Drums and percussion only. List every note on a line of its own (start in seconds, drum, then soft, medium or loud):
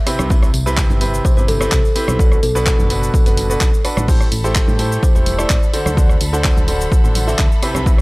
0.07 cross-stick medium
0.07 open hi-hat loud
0.07 tambourine medium
0.19 cross-stick medium
0.19 tambourine soft
0.19 high conga medium
0.19 cabasa medium
0.30 kick loud
0.30 tambourine soft
0.30 cabasa medium
0.43 cross-stick medium
0.43 tambourine soft
0.43 cabasa soft
0.54 open hi-hat loud
0.54 tambourine loud
0.66 tambourine soft
0.66 cabasa medium
0.77 kick loud
0.77 clap loud
0.77 tambourine soft
0.77 cabasa medium
0.90 tambourine soft
0.90 high conga medium
0.90 cabasa soft
1.01 open hi-hat loud
1.01 tambourine medium
1.14 tambourine soft
1.14 cabasa medium
1.25 kick loud
1.25 tambourine soft
1.25 cabasa medium
1.36 tambourine soft
1.36 cabasa soft
1.48 open hi-hat loud
1.48 tambourine medium
1.48 high conga medium
1.60 cross-stick medium
1.60 tambourine soft
1.60 cabasa medium
1.72 kick loud
1.72 clap loud
1.72 tambourine soft
1.72 cabasa medium
1.85 tambourine soft
1.85 cabasa soft
1.95 open hi-hat loud
1.95 tambourine medium
2.08 cross-stick medium
2.08 tambourine soft
2.08 high conga medium
2.08 cabasa medium
2.19 kick loud
2.19 tambourine soft
2.19 cabasa medium
2.32 cross-stick medium
2.32 tambourine soft
2.32 cabasa soft
2.43 open hi-hat loud
2.43 tambourine medium
2.55 tambourine soft
2.55 cabasa medium
2.66 kick loud
2.66 clap loud
2.66 tambourine soft
2.66 cabasa medium
2.79 tambourine soft
2.79 high conga medium
2.79 cabasa soft
2.90 open hi-hat loud
2.90 tambourine medium
3.03 tambourine soft
3.03 cabasa medium
3.14 kick loud
3.14 tambourine medium
3.14 cabasa medium
3.26 open hi-hat medium
3.26 tambourine soft
3.26 cabasa soft
3.37 open hi-hat loud
3.37 tambourine medium
3.37 high conga medium
3.50 tambourine soft
3.50 cabasa medium
3.61 kick loud
3.61 clap loud
3.61 tambourine soft
3.61 cabasa medium
3.74 tambourine soft
3.74 cabasa soft
3.85 cross-stick medium
3.85 open hi-hat loud
3.85 tambourine medium
3.97 cross-stick medium
3.97 tambourine soft
3.97 high conga loud
3.97 cabasa medium
4.08 kick loud
4.08 crash medium
4.08 tambourine medium
4.08 cabasa medium
4.21 cross-stick medium
4.21 tambourine soft
4.21 cabasa soft
4.32 open hi-hat loud
4.32 tambourine loud
4.44 tambourine soft
4.44 cabasa medium
4.55 kick loud
4.55 clap loud
4.55 tambourine medium
4.55 cabasa medium
4.68 tambourine soft
4.68 high conga loud
4.68 cabasa soft
4.79 open hi-hat loud
4.79 tambourine medium
4.92 tambourine soft
4.92 cabasa medium
5.03 kick loud
5.03 tambourine medium
5.03 cabasa medium
5.15 tambourine soft
5.15 cabasa soft
5.26 open hi-hat loud
5.26 tambourine medium
5.26 high conga medium
5.39 cross-stick medium
5.39 tambourine soft
5.39 cabasa medium
5.50 kick loud
5.50 clap loud
5.50 tambourine medium
5.50 cabasa medium
5.62 tambourine soft
5.62 cabasa soft
5.74 open hi-hat loud
5.74 tambourine loud
5.85 cross-stick medium
5.85 tambourine soft
5.85 high conga medium
5.85 cabasa medium
5.97 kick loud
5.97 tambourine medium
5.97 cabasa medium
6.09 cross-stick medium
6.09 tambourine soft
6.09 cabasa soft
6.21 open hi-hat loud
6.21 tambourine loud
6.33 tambourine soft
6.33 cabasa medium
6.44 kick loud
6.44 clap loud
6.44 tambourine medium
6.44 cabasa medium
6.57 tambourine soft
6.57 high conga loud
6.57 cabasa soft
6.68 open hi-hat loud
6.68 tambourine loud
6.80 tambourine soft
6.80 cabasa medium
6.91 kick loud
6.91 tambourine medium
6.91 cabasa medium
7.05 tambourine soft
7.05 cabasa soft
7.15 open hi-hat loud
7.15 tambourine medium
7.15 high conga medium
7.28 tambourine soft
7.28 cabasa medium
7.39 kick loud
7.39 clap loud
7.39 tambourine soft
7.39 cabasa medium
7.52 tambourine soft
7.52 cabasa soft
7.62 cross-stick medium
7.62 open hi-hat loud
7.62 tambourine medium
7.75 cross-stick medium
7.75 tambourine soft
7.75 high conga loud
7.75 cabasa medium
7.86 kick loud
7.86 tambourine medium
7.86 cabasa medium
7.98 cross-stick medium